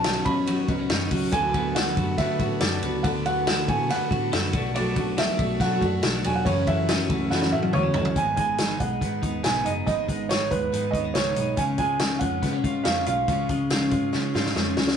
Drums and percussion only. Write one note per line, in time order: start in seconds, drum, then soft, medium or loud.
0.04 snare loud
0.04 ride medium
0.25 kick medium
0.25 ride medium
0.47 ride medium
0.68 kick medium
0.68 ride medium
0.90 snare loud
0.90 ride medium
1.11 kick medium
1.11 open hi-hat medium
1.11 ride medium
1.32 kick loud
1.32 hi-hat pedal medium
1.32 ride medium
1.54 kick medium
1.54 ride medium
1.76 snare loud
1.76 ride medium
1.97 kick loud
1.97 ride medium
2.18 kick medium
2.18 snare soft
2.18 ride medium
2.39 kick medium
2.39 ride medium
2.60 snare loud
2.60 ride medium
2.83 ride medium
3.04 kick loud
3.04 ride medium
3.26 ride medium
3.47 snare loud
3.47 ride medium
3.68 kick loud
3.68 ride medium
3.90 snare soft
3.90 ride medium
4.11 kick medium
4.11 ride medium
4.33 snare loud
4.33 ride medium
4.53 kick loud
4.53 ride medium
4.75 ride medium
4.96 kick medium
4.96 ride medium
5.18 snare loud
5.18 ride medium
5.39 kick loud
5.39 ride medium
5.60 kick medium
5.60 snare soft
5.60 ride medium
5.81 kick medium
5.81 ride medium
6.03 snare loud
6.03 ride medium
6.24 ride medium
6.46 kick loud
6.46 ride medium
6.67 kick medium
6.67 ride medium
6.89 snare loud
6.89 ride medium
7.10 kick loud
7.10 ride medium
7.31 snare medium
7.42 snare medium
7.63 high tom medium
7.73 mid tom medium
7.94 floor tom loud
8.05 floor tom loud
8.16 kick loud
8.16 closed hi-hat medium
8.37 kick medium
8.37 closed hi-hat medium
8.58 snare medium
8.58 closed hi-hat medium
8.80 kick medium
8.80 closed hi-hat medium
9.01 kick medium
9.01 closed hi-hat medium
9.23 kick medium
9.23 closed hi-hat medium
9.44 snare loud
9.44 closed hi-hat medium
9.66 closed hi-hat medium
9.87 kick medium
9.87 closed hi-hat medium
10.09 kick medium
10.09 closed hi-hat medium
10.30 snare loud
10.30 closed hi-hat medium
10.51 kick medium
10.51 closed hi-hat medium
10.73 closed hi-hat medium
10.94 kick medium
10.94 closed hi-hat medium
11.15 snare loud
11.15 closed hi-hat medium
11.36 closed hi-hat medium
11.57 kick loud
11.57 closed hi-hat medium
11.78 kick medium
11.78 closed hi-hat medium
11.99 snare loud
11.99 closed hi-hat medium
12.20 kick medium
12.20 closed hi-hat medium
12.43 kick medium
12.43 snare soft
12.43 closed hi-hat medium
12.64 kick medium
12.64 closed hi-hat medium
12.85 snare loud
12.85 closed hi-hat medium
13.06 closed hi-hat medium
13.28 kick loud
13.28 closed hi-hat medium
13.49 kick medium
13.49 closed hi-hat medium
13.70 snare loud
13.70 closed hi-hat loud
13.91 kick medium
13.91 closed hi-hat medium
14.13 snare soft
14.35 snare medium
14.46 snare medium
14.56 snare medium
14.77 snare loud
14.88 snare medium